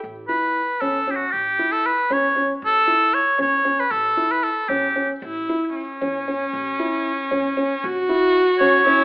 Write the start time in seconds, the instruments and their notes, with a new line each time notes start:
0.04 upright bass A1
0.28 felt piano E4, oboe B4
0.81 upright bass E2, felt piano C#4, oboe A4
1.07 felt piano C#4, oboe G4
1.15 oboe F#4
1.32 upright bass A1, oboe G4
1.59 felt piano E4
1.72 oboe A4
1.86 oboe B4
2.10 upright bass E2, felt piano C#4, oboe C#5
2.36 felt piano C#4
2.62 upright bass A1, oboe A4
2.87 felt piano E4
3.14 oboe C#5
3.38 upright bass E2, felt piano C#4, oboe C#5
3.65 felt piano C#4
3.80 oboe B4
3.91 upright bass A1, oboe A4
4.17 felt piano E4
4.32 oboe B4
4.44 oboe A4
4.68 upright bass E2, felt piano C#4, oboe G4
4.96 felt piano C#4
5.22 upright bass A1, viola E4
5.49 felt piano E4
5.76 viola C#4
6.01 upright bass E2, felt piano C#4
6.28 felt piano C#4
6.53 upright bass A1
6.79 felt piano E4
7.31 upright bass E2, felt piano C#4
7.57 felt piano C#4
7.83 upright bass A1, viola F#4
8.09 felt piano E4
8.59 upright bass E2, felt piano C#4, oboe C#5
8.86 felt piano C#4, viola E4